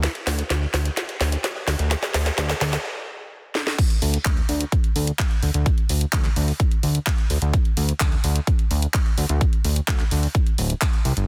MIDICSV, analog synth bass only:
0, 0, Header, 1, 2, 480
1, 0, Start_track
1, 0, Tempo, 468750
1, 36, Time_signature, 4, 2, 24, 8
1, 11540, End_track
2, 0, Start_track
2, 0, Title_t, "Analog synth bass"
2, 0, Program_c, 0, 38
2, 275, Note_on_c, 0, 38, 95
2, 437, Note_off_c, 0, 38, 0
2, 515, Note_on_c, 0, 38, 84
2, 677, Note_off_c, 0, 38, 0
2, 755, Note_on_c, 0, 38, 106
2, 917, Note_off_c, 0, 38, 0
2, 1236, Note_on_c, 0, 38, 94
2, 1398, Note_off_c, 0, 38, 0
2, 1716, Note_on_c, 0, 38, 92
2, 1797, Note_off_c, 0, 38, 0
2, 1836, Note_on_c, 0, 38, 109
2, 1998, Note_off_c, 0, 38, 0
2, 2196, Note_on_c, 0, 38, 99
2, 2358, Note_off_c, 0, 38, 0
2, 2436, Note_on_c, 0, 38, 91
2, 2598, Note_off_c, 0, 38, 0
2, 2676, Note_on_c, 0, 38, 109
2, 2838, Note_off_c, 0, 38, 0
2, 4116, Note_on_c, 0, 38, 95
2, 4278, Note_off_c, 0, 38, 0
2, 4356, Note_on_c, 0, 38, 86
2, 4518, Note_off_c, 0, 38, 0
2, 4596, Note_on_c, 0, 38, 108
2, 4758, Note_off_c, 0, 38, 0
2, 5076, Note_on_c, 0, 38, 96
2, 5238, Note_off_c, 0, 38, 0
2, 5557, Note_on_c, 0, 38, 94
2, 5637, Note_off_c, 0, 38, 0
2, 5677, Note_on_c, 0, 38, 108
2, 5838, Note_off_c, 0, 38, 0
2, 6037, Note_on_c, 0, 38, 94
2, 6198, Note_off_c, 0, 38, 0
2, 6276, Note_on_c, 0, 38, 89
2, 6438, Note_off_c, 0, 38, 0
2, 6517, Note_on_c, 0, 38, 105
2, 6678, Note_off_c, 0, 38, 0
2, 6997, Note_on_c, 0, 38, 96
2, 7158, Note_off_c, 0, 38, 0
2, 7476, Note_on_c, 0, 38, 93
2, 7557, Note_off_c, 0, 38, 0
2, 7596, Note_on_c, 0, 38, 106
2, 7758, Note_off_c, 0, 38, 0
2, 7957, Note_on_c, 0, 38, 98
2, 8118, Note_off_c, 0, 38, 0
2, 8196, Note_on_c, 0, 38, 88
2, 8358, Note_off_c, 0, 38, 0
2, 8437, Note_on_c, 0, 38, 108
2, 8598, Note_off_c, 0, 38, 0
2, 8917, Note_on_c, 0, 38, 98
2, 9078, Note_off_c, 0, 38, 0
2, 9397, Note_on_c, 0, 38, 89
2, 9477, Note_off_c, 0, 38, 0
2, 9517, Note_on_c, 0, 38, 106
2, 9678, Note_off_c, 0, 38, 0
2, 9877, Note_on_c, 0, 38, 104
2, 10038, Note_off_c, 0, 38, 0
2, 10116, Note_on_c, 0, 38, 86
2, 10278, Note_off_c, 0, 38, 0
2, 10357, Note_on_c, 0, 38, 105
2, 10518, Note_off_c, 0, 38, 0
2, 10837, Note_on_c, 0, 26, 94
2, 10998, Note_off_c, 0, 26, 0
2, 11316, Note_on_c, 0, 36, 98
2, 11397, Note_off_c, 0, 36, 0
2, 11437, Note_on_c, 0, 31, 90
2, 11540, Note_off_c, 0, 31, 0
2, 11540, End_track
0, 0, End_of_file